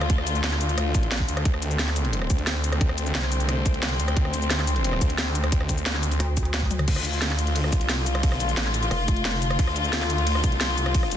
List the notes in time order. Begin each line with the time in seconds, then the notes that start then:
Already playing: D2 D3 A3 F4
0.01 cross-stick, closed hi-hat
0.10 kick, closed hi-hat
0.18 cross-stick
0.27 closed hi-hat, cabasa
0.35 cabasa
0.44 D2, snare, closed hi-hat
0.52 snare, closed hi-hat
0.61 closed hi-hat, cabasa
0.69 closed hi-hat, cabasa
0.78 D2, cross-stick, closed hi-hat
0.95 A1, kick, closed hi-hat, cabasa
1.03 closed hi-hat
1.12 snare, closed hi-hat
1.20 kick
1.28 D2, closed hi-hat, cabasa
1.37 cross-stick, closed hi-hat
1.45 D2 C4, kick, closed hi-hat
1.54 cross-stick
1.62 closed hi-hat, cabasa
1.71 cabasa
1.79 snare, closed hi-hat
1.88 snare, closed hi-hat
1.96 closed hi-hat, cabasa
2.05 closed hi-hat
2.13 closed hi-hat
2.22 cross-stick
2.30 D2, kick, closed hi-hat, cabasa
2.38 closed hi-hat
2.47 snare, closed hi-hat
2.64 closed hi-hat, cabasa
2.72 cross-stick, closed hi-hat
2.81 kick, closed hi-hat
2.89 cross-stick
2.98 closed hi-hat, cabasa
3.06 cabasa
3.15 C2, snare, closed hi-hat
3.23 snare, closed hi-hat
3.32 closed hi-hat, cabasa
3.40 closed hi-hat, cabasa
3.49 cross-stick, closed hi-hat
3.66 kick, closed hi-hat, cabasa
3.74 closed hi-hat
3.83 snare, closed hi-hat
4.00 D2, closed hi-hat, cabasa
4.08 cross-stick, closed hi-hat
4.17 D2, kick, closed hi-hat
4.25 cross-stick
4.34 closed hi-hat, cabasa
4.42 cabasa
4.50 snare, closed hi-hat
4.59 snare, closed hi-hat
4.67 closed hi-hat, cabasa
4.76 closed hi-hat
4.84 closed hi-hat
4.93 cross-stick
5.01 D2, kick, closed hi-hat, cabasa
5.10 closed hi-hat
5.18 snare, closed hi-hat
5.35 closed hi-hat, cabasa
5.44 cross-stick, closed hi-hat
5.52 kick, closed hi-hat
5.61 cross-stick
5.69 kick, closed hi-hat, cabasa
5.78 cabasa
5.86 D2, snare, closed hi-hat
5.95 snare, closed hi-hat
6.03 closed hi-hat, cabasa
6.11 closed hi-hat, cabasa
6.20 D2, cross-stick, closed hi-hat
6.37 kick, closed hi-hat, cabasa
6.45 closed hi-hat
6.54 snare, closed hi-hat
6.62 kick
6.71 closed hi-hat, high tom, cabasa
6.79 cross-stick, closed hi-hat, mid tom
6.88 D2 D3 A3 F4, kick, closed hi-hat, crash, ride
6.96 cross-stick
7.05 closed hi-hat, cabasa
7.13 cabasa
7.22 snare, closed hi-hat, ride
7.30 snare, closed hi-hat
7.39 closed hi-hat, cabasa
7.47 closed hi-hat
7.56 closed hi-hat, ride
7.64 cross-stick
7.72 C2, kick, closed hi-hat, cabasa
7.81 closed hi-hat
7.89 snare, closed hi-hat, ride
8.06 closed hi-hat, cabasa
8.15 cross-stick, closed hi-hat
8.23 kick, closed hi-hat, ride
8.32 B1, cross-stick
8.40 closed hi-hat, cabasa
8.49 cabasa
8.57 A1, snare, closed hi-hat, ride
8.66 snare, closed hi-hat
8.74 closed hi-hat, cabasa
8.83 closed hi-hat, cabasa
8.91 F1, cross-stick, closed hi-hat, ride
9.08 kick, closed hi-hat, cabasa
9.17 closed hi-hat
9.25 snare, closed hi-hat, ride
9.42 closed hi-hat, cabasa
9.50 cross-stick, closed hi-hat
9.59 D2, kick, closed hi-hat, ride
9.67 cross-stick
9.76 closed hi-hat, cabasa
9.84 cabasa
9.93 snare, closed hi-hat, ride
10.01 snare, closed hi-hat
10.10 closed hi-hat, cabasa
10.18 closed hi-hat
10.27 closed hi-hat, ride
10.35 cross-stick
10.44 C2, kick, closed hi-hat, cabasa
10.52 closed hi-hat
10.61 snare, closed hi-hat, ride
10.78 closed hi-hat, cabasa
10.86 cross-stick, closed hi-hat
10.94 kick, closed hi-hat, ride
11.03 cross-stick
11.11 closed hi-hat, cabasa